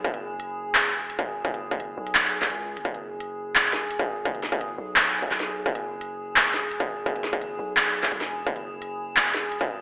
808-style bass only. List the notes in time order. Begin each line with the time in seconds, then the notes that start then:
0.05 F#1
0.92 E1
1.45 F#1
1.97 B1
2.50 C#2
2.77 E1
2.85 F#1
3.73 E1
4.25 F#1
4.78 B1
5.31 B1
5.66 F#1
6.54 E1
7.06 F#1
7.59 B1
8.11 B1
8.20 E1
8.47 F#1
9.34 E1